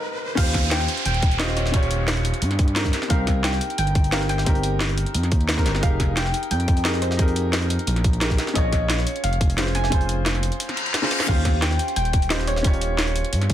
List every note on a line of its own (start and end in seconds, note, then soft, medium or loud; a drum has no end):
0.00 0.39 C4 medium
0.00 0.39 D#4 medium
0.00 0.38 G4 medium
0.00 0.40 A#4 loud
0.00 riser medium
0.35 0.87 D#2 loud
0.35 1.37 C#4 medium
0.35 1.37 F4 medium
0.35 1.38 G4 medium
0.35 0.69 F5 loud
0.35 kick loud
0.35 closed hi-hat medium
0.35 crash loud
0.35 downlifter medium
0.40 1.39 C5 loud
0.54 kick medium
0.54 snare medium
0.54 closed hi-hat medium
0.71 1.04 G5 loud
0.71 snare loud
0.71 closed hi-hat medium
0.80 snare medium
0.88 closed hi-hat medium
0.97 closed hi-hat soft
1.05 2.32 D#1 medium
1.05 1.41 G5 loud
1.05 closed hi-hat medium
1.14 closed hi-hat soft
1.22 kick loud
1.22 closed hi-hat medium
1.31 closed hi-hat soft
1.39 1.70 C#4 medium
1.39 1.72 F4 medium
1.39 1.72 G4 medium
1.39 1.72 C5 medium
1.39 1.57 D#5 medium
1.39 snare loud
1.39 closed hi-hat loud
1.39 open hi-hat medium
1.49 snare soft
1.57 2.89 C#5 medium
1.57 snare soft
1.57 closed hi-hat medium
1.66 snare soft
1.72 2.73 C#4 medium
1.72 2.74 F4 medium
1.72 2.74 G4 medium
1.72 kick loud
1.72 closed hi-hat medium
1.76 2.75 C#5 loud
1.83 closed hi-hat soft
1.91 closed hi-hat medium
2.08 snare loud
2.08 closed hi-hat medium
2.17 closed hi-hat soft
2.25 closed hi-hat medium
2.34 closed hi-hat soft
2.42 2.92 G2 loud
2.42 closed hi-hat medium
2.51 snare soft
2.51 closed hi-hat soft
2.59 kick loud
2.59 closed hi-hat medium
2.68 closed hi-hat soft
2.75 3.07 C4 medium
2.75 3.08 D#4 medium
2.75 3.08 G4 medium
2.75 3.09 A#4 medium
2.75 snare loud
2.75 closed hi-hat medium
2.85 kick medium
2.85 snare soft
2.93 snare soft
2.93 closed hi-hat medium
3.02 snare soft
3.08 3.60 C2 loud
3.08 4.09 C4 medium
3.08 4.10 D#4 medium
3.08 4.11 G4 medium
3.08 3.45 F5 loud
3.08 kick loud
3.08 closed hi-hat medium
3.12 4.12 A#4 loud
3.27 kick medium
3.27 snare medium
3.27 closed hi-hat medium
3.44 3.77 G5 loud
3.44 snare loud
3.44 closed hi-hat medium
3.53 snare medium
3.61 closed hi-hat medium
3.70 closed hi-hat soft
3.78 5.05 G1 medium
3.78 4.13 G5 loud
3.78 closed hi-hat medium
3.87 closed hi-hat soft
3.95 kick loud
3.95 closed hi-hat medium
4.04 closed hi-hat soft
4.11 4.43 C4 medium
4.11 4.44 D#4 medium
4.11 4.45 G4 medium
4.11 4.45 A#4 medium
4.11 4.28 F5 loud
4.11 snare loud
4.11 closed hi-hat medium
4.11 open hi-hat medium
4.21 snare soft
4.29 5.62 G5 loud
4.29 snare soft
4.29 closed hi-hat medium
4.38 snare soft
4.44 5.46 C4 loud
4.44 5.46 D#4 medium
4.44 5.47 G4 medium
4.44 kick loud
4.44 closed hi-hat medium
4.49 5.48 A#4 loud
4.55 closed hi-hat soft
4.63 closed hi-hat medium
4.80 snare loud
4.80 closed hi-hat medium
4.89 closed hi-hat soft
4.98 closed hi-hat medium
5.06 closed hi-hat soft
5.14 5.33 F2 loud
5.14 closed hi-hat medium
5.23 snare soft
5.23 closed hi-hat soft
5.32 5.65 D#2 medium
5.32 kick loud
5.32 closed hi-hat medium
5.41 closed hi-hat soft
5.49 snare loud
5.49 closed hi-hat medium
5.56 5.80 C4 medium
5.56 5.79 D#4 medium
5.56 5.81 G4 medium
5.56 5.81 A#4 loud
5.56 kick medium
5.56 snare soft
5.66 5.81 G1 medium
5.66 snare soft
5.66 closed hi-hat medium
5.75 snare soft
5.81 6.33 F1 loud
5.81 6.82 D#4 medium
5.81 6.83 G4 medium
5.81 6.84 G#4 medium
5.81 6.15 F5 loud
5.81 kick loud
5.81 closed hi-hat medium
5.85 6.84 A#4 loud
6.00 kick medium
6.00 snare medium
6.00 closed hi-hat medium
6.17 6.49 G5 loud
6.17 snare loud
6.17 closed hi-hat medium
6.26 snare medium
6.34 closed hi-hat medium
6.43 closed hi-hat soft
6.51 7.78 F2 medium
6.51 6.86 G5 loud
6.51 closed hi-hat medium
6.60 closed hi-hat soft
6.68 kick loud
6.68 closed hi-hat medium
6.77 closed hi-hat soft
6.84 7.16 D#4 medium
6.84 7.17 G4 medium
6.84 7.17 G#4 medium
6.84 7.18 A#4 medium
6.84 7.03 D#5 loud
6.84 snare loud
6.84 closed hi-hat medium
6.84 open hi-hat medium
6.94 snare soft
7.02 8.34 C5 loud
7.02 snare soft
7.02 closed hi-hat medium
7.11 snare soft
7.17 8.18 D#4 loud
7.17 8.19 G4 medium
7.17 8.20 G#4 medium
7.17 kick loud
7.17 closed hi-hat medium
7.21 8.21 A#4 loud
7.28 closed hi-hat soft
7.36 closed hi-hat medium
7.53 snare loud
7.53 closed hi-hat medium
7.62 closed hi-hat soft
7.70 closed hi-hat medium
7.79 closed hi-hat soft
7.87 8.37 A#1 loud
7.87 closed hi-hat medium
7.96 snare soft
7.96 closed hi-hat soft
8.04 kick loud
8.04 closed hi-hat medium
8.13 closed hi-hat soft
8.20 8.53 D#4 medium
8.20 8.53 G4 medium
8.20 8.54 G#4 medium
8.20 8.54 A#4 medium
8.20 snare loud
8.20 closed hi-hat medium
8.30 kick medium
8.30 snare soft
8.38 snare soft
8.38 closed hi-hat medium
8.47 snare medium
8.47 snare soft
8.53 9.05 A#1 loud
8.53 9.55 C#4 medium
8.53 9.56 F4 medium
8.53 9.56 G#4 medium
8.53 8.91 D#5 loud
8.53 kick loud
8.53 closed hi-hat loud
8.53 closed hi-hat medium
8.58 9.57 C#5 loud
8.73 kick medium
8.73 snare medium
8.73 closed hi-hat medium
8.90 9.25 C#5 loud
8.90 snare loud
8.90 closed hi-hat medium
8.90 closed hi-hat loud
8.99 snare medium
9.07 closed hi-hat medium
9.16 closed hi-hat soft
9.24 10.51 F1 medium
9.24 9.55 F5 loud
9.24 closed hi-hat loud
9.24 closed hi-hat medium
9.33 closed hi-hat soft
9.41 kick loud
9.41 closed hi-hat medium
9.50 closed hi-hat soft
9.57 9.88 C#4 medium
9.57 9.90 F4 medium
9.57 9.90 G#4 medium
9.57 9.91 C5 medium
9.57 snare loud
9.57 closed hi-hat medium
9.57 open hi-hat medium
9.67 snare soft
9.75 10.39 G#5 loud
9.75 snare soft
9.75 closed hi-hat medium
9.84 snare soft
9.90 10.91 C#4 medium
9.90 10.92 F4 medium
9.90 10.93 G#4 medium
9.90 kick loud
9.90 closed hi-hat medium
9.94 10.93 C5 loud
10.01 closed hi-hat soft
10.09 closed hi-hat medium
10.26 snare loud
10.26 closed hi-hat medium
10.26 closed hi-hat loud
10.35 snare medium
10.35 closed hi-hat soft
10.43 closed hi-hat medium
10.52 closed hi-hat soft
10.60 closed hi-hat loud
10.60 closed hi-hat medium
10.60 reverse cymbal medium
10.69 snare soft
10.69 closed hi-hat soft
10.77 closed hi-hat medium
10.86 closed hi-hat soft
10.94 snare medium
10.94 snare loud
10.94 closed hi-hat loud
10.94 closed hi-hat medium
11.02 11.25 C#4 medium
11.02 11.26 F4 medium
11.02 11.27 G#4 medium
11.02 11.27 C5 loud
11.02 snare soft
11.02 snare medium
11.11 snare loud
11.11 closed hi-hat medium
11.20 snare medium
11.20 snare loud
11.20 closed hi-hat medium
11.26 11.78 D#2 loud
11.26 12.28 C#4 medium
11.26 12.28 F4 medium
11.26 12.29 G4 medium
11.26 11.63 F5 loud
11.26 kick loud
11.26 closed hi-hat loud
11.26 closed hi-hat medium
11.26 crash medium
11.30 12.30 C5 loud
11.45 kick medium
11.45 snare medium
11.45 closed hi-hat medium
11.62 11.95 G5 loud
11.62 snare loud
11.62 closed hi-hat loud
11.62 closed hi-hat medium
11.71 snare medium
11.79 closed hi-hat medium
11.88 closed hi-hat soft
11.96 13.23 D#1 medium
11.96 12.32 G5 loud
11.96 closed hi-hat loud
11.96 closed hi-hat medium
12.05 closed hi-hat soft
12.13 kick loud
12.13 closed hi-hat medium
12.22 closed hi-hat soft
12.30 12.61 C#4 medium
12.30 12.63 F4 medium
12.30 12.63 G4 medium
12.30 12.63 C5 medium
12.30 12.48 D#5 loud
12.30 snare loud
12.30 closed hi-hat loud
12.30 open hi-hat medium
12.39 snare medium
12.47 13.54 C#5 loud
12.47 snare soft
12.47 closed hi-hat medium
12.56 snare soft
12.63 13.54 C#4 loud
12.63 13.54 F4 medium
12.63 13.54 G4 medium
12.63 kick loud
12.63 closed hi-hat medium
12.67 13.54 C#5 loud
12.73 closed hi-hat soft
12.81 closed hi-hat medium
12.98 snare loud
12.98 closed hi-hat loud
12.98 closed hi-hat medium
13.08 closed hi-hat soft
13.16 closed hi-hat medium
13.25 closed hi-hat soft
13.33 13.54 G2 loud
13.33 closed hi-hat medium
13.42 snare soft
13.42 closed hi-hat soft
13.50 kick loud
13.50 closed hi-hat medium